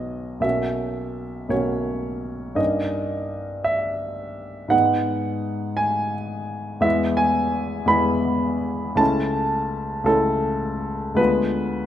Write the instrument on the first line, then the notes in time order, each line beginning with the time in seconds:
grand piano
Already playing: B1 B3 D#4 F#4 C#5 D#5
0.40 B1 A#3 C#4 F#4 E5
1.49 B1 A#3 C#4 F#4 C#5
2.55 G2 A#3 C#4 D#4 D#5
3.64 E5
4.68 G#2 G#3 B3 D#4 F#5
5.77 G#5
6.81 E2 G#3 B3 E4 E5
7.17 G#5
7.86 E2 G#3 B3 E4 B5
8.95 C#2 A3 C#4 E4 A5
10.04 C#2 A3 C#4 E4 A4
11.15 D2 G#3 B3 F4 B4